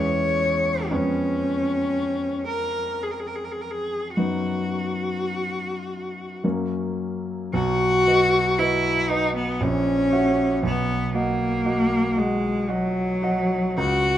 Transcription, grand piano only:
0, 0, Header, 1, 2, 480
1, 0, Start_track
1, 0, Key_signature, 5, "major"
1, 0, Tempo, 1030928
1, 424, Time_signature, 3, 2, 24, 8
1, 903, Tempo, 1075269
1, 1383, Tempo, 1149425
1, 2343, Tempo, 1104972
1, 3303, Tempo, 1030928
1, 5703, Tempo, 1077199
1, 6371, End_track
2, 0, Start_track
2, 0, Title_t, "Grand piano"
2, 0, Program_c, 0, 0
2, 0, Control_c, 0, 64, 127
2, 0, Note_on_c, 0, 40, 52
2, 0, Note_on_c, 0, 56, 46
2, 0, Note_on_c, 0, 61, 47
2, 410, Note_off_c, 0, 61, 0
2, 411, Note_off_c, 0, 40, 0
2, 411, Note_off_c, 0, 56, 0
2, 424, Note_on_c, 0, 61, 46
2, 425, Note_on_c, 0, 41, 54
2, 425, Note_on_c, 0, 59, 44
2, 426, Note_on_c, 0, 56, 46
2, 431, Control_c, 0, 64, 0
2, 506, Control_c, 0, 64, 127
2, 1845, Note_off_c, 0, 41, 0
2, 1845, Note_off_c, 0, 59, 0
2, 1845, Note_off_c, 0, 61, 0
2, 1846, Note_off_c, 0, 56, 0
2, 1864, Note_on_c, 0, 59, 35
2, 1865, Note_on_c, 0, 54, 37
2, 1865, Note_on_c, 0, 63, 37
2, 1866, Note_on_c, 0, 42, 40
2, 1870, Control_c, 0, 64, 0
2, 1938, Control_c, 0, 64, 127
2, 2813, Note_off_c, 0, 59, 0
2, 2814, Note_off_c, 0, 54, 0
2, 2814, Note_off_c, 0, 63, 0
2, 2815, Note_off_c, 0, 42, 0
2, 2832, Note_on_c, 0, 58, 37
2, 2833, Note_on_c, 0, 42, 42
2, 2833, Note_on_c, 0, 61, 35
2, 2834, Note_on_c, 0, 54, 37
2, 2838, Control_c, 0, 64, 0
2, 2916, Control_c, 0, 64, 127
2, 3291, Note_off_c, 0, 42, 0
2, 3291, Note_off_c, 0, 58, 0
2, 3292, Note_off_c, 0, 54, 0
2, 3292, Note_off_c, 0, 61, 0
2, 3308, Note_on_c, 0, 35, 68
2, 3314, Control_c, 0, 64, 0
2, 3376, Control_c, 0, 64, 127
2, 3544, Note_off_c, 0, 35, 0
2, 3554, Note_on_c, 0, 66, 40
2, 3560, Note_on_c, 0, 71, 43
2, 3561, Note_on_c, 0, 75, 47
2, 3775, Note_off_c, 0, 66, 0
2, 3778, Note_off_c, 0, 71, 0
2, 3779, Note_off_c, 0, 75, 0
2, 3799, Note_on_c, 0, 66, 49
2, 3802, Note_on_c, 0, 71, 47
2, 3802, Note_on_c, 0, 75, 52
2, 4016, Note_off_c, 0, 66, 0
2, 4018, Note_off_c, 0, 71, 0
2, 4018, Note_off_c, 0, 75, 0
2, 4034, Note_on_c, 0, 66, 43
2, 4038, Note_on_c, 0, 75, 46
2, 4039, Note_on_c, 0, 71, 41
2, 4252, Note_off_c, 0, 66, 0
2, 4254, Note_off_c, 0, 71, 0
2, 4254, Note_off_c, 0, 75, 0
2, 4274, Note_on_c, 0, 34, 64
2, 4278, Control_c, 0, 64, 0
2, 4353, Control_c, 0, 64, 127
2, 4503, Note_off_c, 0, 34, 0
2, 4511, Note_on_c, 0, 66, 48
2, 4515, Note_on_c, 0, 76, 43
2, 4516, Note_on_c, 0, 78, 50
2, 4731, Note_off_c, 0, 66, 0
2, 4732, Note_off_c, 0, 76, 0
2, 4733, Note_off_c, 0, 78, 0
2, 4750, Note_on_c, 0, 35, 62
2, 4756, Control_c, 0, 64, 0
2, 4845, Control_c, 0, 64, 127
2, 4981, Note_off_c, 0, 35, 0
2, 4988, Note_on_c, 0, 66, 42
2, 4993, Note_on_c, 0, 75, 41
2, 4993, Note_on_c, 0, 78, 47
2, 5209, Note_off_c, 0, 66, 0
2, 5211, Note_off_c, 0, 78, 0
2, 5212, Note_off_c, 0, 75, 0
2, 5228, Note_on_c, 0, 66, 51
2, 5228, Note_on_c, 0, 75, 48
2, 5230, Note_on_c, 0, 78, 52
2, 5448, Note_off_c, 0, 66, 0
2, 5448, Note_off_c, 0, 75, 0
2, 5449, Note_off_c, 0, 78, 0
2, 5466, Note_on_c, 0, 66, 41
2, 5466, Note_on_c, 0, 75, 39
2, 5470, Note_on_c, 0, 78, 45
2, 5687, Note_off_c, 0, 66, 0
2, 5687, Note_off_c, 0, 75, 0
2, 5689, Note_off_c, 0, 78, 0
2, 5707, Note_on_c, 0, 66, 49
2, 5710, Note_on_c, 0, 75, 51
2, 5711, Note_on_c, 0, 78, 55
2, 5932, Note_off_c, 0, 66, 0
2, 5933, Note_off_c, 0, 75, 0
2, 5934, Note_off_c, 0, 78, 0
2, 5948, Note_on_c, 0, 66, 49
2, 5951, Note_on_c, 0, 75, 49
2, 5953, Note_on_c, 0, 78, 54
2, 6176, Note_off_c, 0, 66, 0
2, 6178, Note_off_c, 0, 75, 0
2, 6179, Note_off_c, 0, 78, 0
2, 6193, Note_on_c, 0, 37, 68
2, 6201, Control_c, 0, 64, 0
2, 6273, Control_c, 0, 64, 127
2, 6371, Note_off_c, 0, 37, 0
2, 6371, End_track
0, 0, End_of_file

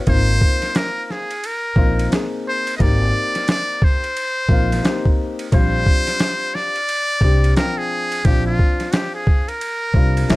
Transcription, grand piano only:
0, 0, Header, 1, 2, 480
1, 0, Start_track
1, 0, Tempo, 681818
1, 48, Time_signature, 4, 2, 24, 8
1, 7293, End_track
2, 0, Start_track
2, 0, Title_t, "Grand piano"
2, 0, Program_c, 0, 0
2, 46, Note_on_c, 0, 58, 72
2, 52, Note_on_c, 0, 60, 66
2, 59, Note_on_c, 0, 63, 67
2, 65, Note_on_c, 0, 65, 81
2, 905, Note_off_c, 0, 58, 0
2, 908, Note_off_c, 0, 60, 0
2, 911, Note_off_c, 0, 63, 0
2, 914, Note_off_c, 0, 65, 0
2, 1245, Note_on_c, 0, 58, 78
2, 1250, Note_on_c, 0, 60, 71
2, 1256, Note_on_c, 0, 63, 72
2, 1259, Note_on_c, 0, 65, 83
2, 1462, Note_off_c, 0, 58, 0
2, 1464, Note_off_c, 0, 60, 0
2, 1467, Note_off_c, 0, 63, 0
2, 1469, Note_off_c, 0, 65, 0
2, 1481, Note_on_c, 0, 58, 64
2, 1486, Note_on_c, 0, 60, 57
2, 1492, Note_on_c, 0, 63, 58
2, 1499, Note_on_c, 0, 68, 75
2, 1915, Note_off_c, 0, 58, 0
2, 1918, Note_off_c, 0, 60, 0
2, 1921, Note_off_c, 0, 63, 0
2, 1924, Note_off_c, 0, 68, 0
2, 1964, Note_on_c, 0, 58, 76
2, 1970, Note_on_c, 0, 60, 68
2, 1974, Note_on_c, 0, 63, 66
2, 1980, Note_on_c, 0, 67, 81
2, 2824, Note_off_c, 0, 58, 0
2, 2827, Note_off_c, 0, 60, 0
2, 2829, Note_off_c, 0, 63, 0
2, 2831, Note_off_c, 0, 67, 0
2, 3163, Note_on_c, 0, 58, 76
2, 3170, Note_on_c, 0, 60, 69
2, 3176, Note_on_c, 0, 63, 67
2, 3183, Note_on_c, 0, 65, 86
2, 3381, Note_off_c, 0, 58, 0
2, 3384, Note_off_c, 0, 60, 0
2, 3387, Note_off_c, 0, 63, 0
2, 3391, Note_off_c, 0, 65, 0
2, 3400, Note_on_c, 0, 58, 76
2, 3405, Note_on_c, 0, 60, 68
2, 3412, Note_on_c, 0, 63, 74
2, 3418, Note_on_c, 0, 67, 77
2, 3835, Note_off_c, 0, 58, 0
2, 3838, Note_off_c, 0, 60, 0
2, 3841, Note_off_c, 0, 63, 0
2, 3844, Note_off_c, 0, 67, 0
2, 3885, Note_on_c, 0, 55, 74
2, 3890, Note_on_c, 0, 60, 64
2, 3897, Note_on_c, 0, 62, 64
2, 3902, Note_on_c, 0, 65, 80
2, 4744, Note_off_c, 0, 55, 0
2, 4747, Note_off_c, 0, 60, 0
2, 4750, Note_off_c, 0, 62, 0
2, 4753, Note_off_c, 0, 65, 0
2, 5083, Note_on_c, 0, 55, 73
2, 5090, Note_on_c, 0, 60, 70
2, 5096, Note_on_c, 0, 62, 69
2, 5099, Note_on_c, 0, 67, 83
2, 5301, Note_off_c, 0, 55, 0
2, 5305, Note_off_c, 0, 60, 0
2, 5307, Note_off_c, 0, 62, 0
2, 5309, Note_off_c, 0, 67, 0
2, 5321, Note_on_c, 0, 53, 64
2, 5328, Note_on_c, 0, 60, 61
2, 5333, Note_on_c, 0, 62, 56
2, 5339, Note_on_c, 0, 79, 75
2, 5756, Note_off_c, 0, 53, 0
2, 5759, Note_off_c, 0, 60, 0
2, 5761, Note_off_c, 0, 62, 0
2, 5764, Note_off_c, 0, 79, 0
2, 5804, Note_on_c, 0, 53, 72
2, 5810, Note_on_c, 0, 60, 65
2, 5814, Note_on_c, 0, 62, 67
2, 5820, Note_on_c, 0, 65, 78
2, 6664, Note_off_c, 0, 53, 0
2, 6666, Note_off_c, 0, 60, 0
2, 6669, Note_off_c, 0, 62, 0
2, 6672, Note_off_c, 0, 65, 0
2, 6997, Note_on_c, 0, 55, 79
2, 7002, Note_on_c, 0, 60, 67
2, 7007, Note_on_c, 0, 62, 69
2, 7015, Note_on_c, 0, 65, 84
2, 7218, Note_off_c, 0, 55, 0
2, 7221, Note_off_c, 0, 60, 0
2, 7223, Note_off_c, 0, 62, 0
2, 7227, Note_off_c, 0, 65, 0
2, 7241, Note_on_c, 0, 54, 79
2, 7246, Note_on_c, 0, 59, 76
2, 7252, Note_on_c, 0, 61, 77
2, 7257, Note_on_c, 0, 64, 91
2, 7293, Note_off_c, 0, 54, 0
2, 7293, Note_off_c, 0, 59, 0
2, 7293, Note_off_c, 0, 61, 0
2, 7293, Note_off_c, 0, 64, 0
2, 7293, End_track
0, 0, End_of_file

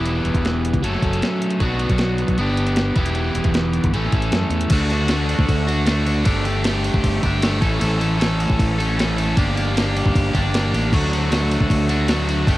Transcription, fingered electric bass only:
0, 0, Header, 1, 2, 480
1, 0, Start_track
1, 0, Key_signature, 2, "major"
1, 0, Tempo, 388098
1, 75, Time_signature, 4, 2, 24, 8
1, 15556, End_track
2, 0, Start_track
2, 0, Title_t, "Fingered electric bass"
2, 0, Program_c, 0, 33
2, 0, Note_on_c, 0, 28, 95
2, 276, Note_off_c, 0, 28, 0
2, 313, Note_on_c, 0, 28, 87
2, 421, Note_off_c, 0, 28, 0
2, 428, Note_on_c, 0, 28, 92
2, 873, Note_off_c, 0, 28, 0
2, 914, Note_on_c, 0, 37, 90
2, 1025, Note_off_c, 0, 37, 0
2, 1036, Note_on_c, 0, 30, 97
2, 1253, Note_off_c, 0, 30, 0
2, 1261, Note_on_c, 0, 30, 84
2, 1488, Note_off_c, 0, 30, 0
2, 1984, Note_on_c, 0, 35, 103
2, 2319, Note_off_c, 0, 35, 0
2, 2350, Note_on_c, 0, 35, 99
2, 2793, Note_off_c, 0, 35, 0
2, 2822, Note_on_c, 0, 35, 85
2, 2937, Note_off_c, 0, 35, 0
2, 2946, Note_on_c, 0, 31, 96
2, 3619, Note_off_c, 0, 31, 0
2, 3658, Note_on_c, 0, 28, 98
2, 4107, Note_off_c, 0, 28, 0
2, 4143, Note_on_c, 0, 28, 89
2, 4257, Note_off_c, 0, 28, 0
2, 4264, Note_on_c, 0, 28, 94
2, 4710, Note_off_c, 0, 28, 0
2, 4753, Note_on_c, 0, 31, 87
2, 4863, Note_off_c, 0, 31, 0
2, 4869, Note_on_c, 0, 33, 98
2, 5088, Note_off_c, 0, 33, 0
2, 5096, Note_on_c, 0, 33, 87
2, 5325, Note_off_c, 0, 33, 0
2, 5336, Note_on_c, 0, 42, 78
2, 5559, Note_off_c, 0, 42, 0
2, 5564, Note_on_c, 0, 40, 85
2, 5793, Note_off_c, 0, 40, 0
2, 5816, Note_on_c, 0, 38, 90
2, 6616, Note_off_c, 0, 38, 0
2, 6660, Note_on_c, 0, 38, 88
2, 6777, Note_off_c, 0, 38, 0
2, 6785, Note_on_c, 0, 38, 88
2, 7702, Note_off_c, 0, 38, 0
2, 7744, Note_on_c, 0, 31, 102
2, 8543, Note_off_c, 0, 31, 0
2, 8578, Note_on_c, 0, 31, 83
2, 8694, Note_off_c, 0, 31, 0
2, 8702, Note_on_c, 0, 31, 89
2, 8931, Note_off_c, 0, 31, 0
2, 8941, Note_on_c, 0, 31, 97
2, 9393, Note_off_c, 0, 31, 0
2, 9420, Note_on_c, 0, 33, 89
2, 9652, Note_off_c, 0, 33, 0
2, 9670, Note_on_c, 0, 33, 98
2, 10467, Note_off_c, 0, 33, 0
2, 10510, Note_on_c, 0, 33, 86
2, 10623, Note_off_c, 0, 33, 0
2, 10630, Note_on_c, 0, 33, 86
2, 11548, Note_off_c, 0, 33, 0
2, 11591, Note_on_c, 0, 31, 105
2, 12388, Note_off_c, 0, 31, 0
2, 12439, Note_on_c, 0, 31, 90
2, 12552, Note_off_c, 0, 31, 0
2, 12564, Note_on_c, 0, 31, 81
2, 12785, Note_off_c, 0, 31, 0
2, 12792, Note_on_c, 0, 31, 90
2, 13240, Note_off_c, 0, 31, 0
2, 13260, Note_on_c, 0, 33, 94
2, 13492, Note_off_c, 0, 33, 0
2, 13509, Note_on_c, 0, 38, 99
2, 14304, Note_off_c, 0, 38, 0
2, 14360, Note_on_c, 0, 38, 92
2, 14466, Note_off_c, 0, 38, 0
2, 14473, Note_on_c, 0, 38, 85
2, 15383, Note_off_c, 0, 38, 0
2, 15428, Note_on_c, 0, 31, 102
2, 15556, Note_off_c, 0, 31, 0
2, 15556, End_track
0, 0, End_of_file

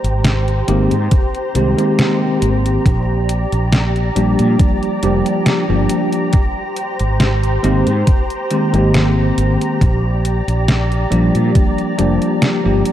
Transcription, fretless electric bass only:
0, 0, Header, 1, 2, 480
1, 0, Start_track
1, 0, Tempo, 869565
1, 1577, Time_signature, 4, 2, 24, 8
1, 7133, End_track
2, 0, Start_track
2, 0, Title_t, "Fretless electric bass"
2, 0, Program_c, 0, 35
2, 21, Note_on_c, 0, 32, 79
2, 335, Note_off_c, 0, 32, 0
2, 376, Note_on_c, 0, 32, 87
2, 476, Note_off_c, 0, 32, 0
2, 504, Note_on_c, 0, 44, 97
2, 591, Note_off_c, 0, 44, 0
2, 856, Note_on_c, 0, 36, 88
2, 956, Note_off_c, 0, 36, 0
2, 1336, Note_on_c, 0, 32, 98
2, 1527, Note_off_c, 0, 32, 0
2, 1577, Note_on_c, 0, 34, 98
2, 1900, Note_off_c, 0, 34, 0
2, 1944, Note_on_c, 0, 34, 80
2, 2257, Note_off_c, 0, 34, 0
2, 2297, Note_on_c, 0, 34, 87
2, 2397, Note_off_c, 0, 34, 0
2, 2425, Note_on_c, 0, 46, 94
2, 2512, Note_off_c, 0, 46, 0
2, 2775, Note_on_c, 0, 29, 81
2, 2876, Note_off_c, 0, 29, 0
2, 3143, Note_on_c, 0, 31, 88
2, 3231, Note_off_c, 0, 31, 0
2, 3864, Note_on_c, 0, 32, 81
2, 4177, Note_off_c, 0, 32, 0
2, 4217, Note_on_c, 0, 32, 84
2, 4316, Note_off_c, 0, 32, 0
2, 4341, Note_on_c, 0, 44, 100
2, 4430, Note_off_c, 0, 44, 0
2, 4821, Note_on_c, 0, 32, 80
2, 5135, Note_off_c, 0, 32, 0
2, 5175, Note_on_c, 0, 32, 87
2, 5275, Note_off_c, 0, 32, 0
2, 5418, Note_on_c, 0, 34, 100
2, 5740, Note_off_c, 0, 34, 0
2, 5782, Note_on_c, 0, 34, 83
2, 6096, Note_off_c, 0, 34, 0
2, 6134, Note_on_c, 0, 34, 85
2, 6235, Note_off_c, 0, 34, 0
2, 6263, Note_on_c, 0, 46, 98
2, 6351, Note_off_c, 0, 46, 0
2, 6619, Note_on_c, 0, 29, 83
2, 6718, Note_off_c, 0, 29, 0
2, 6986, Note_on_c, 0, 31, 89
2, 7072, Note_off_c, 0, 31, 0
2, 7133, End_track
0, 0, End_of_file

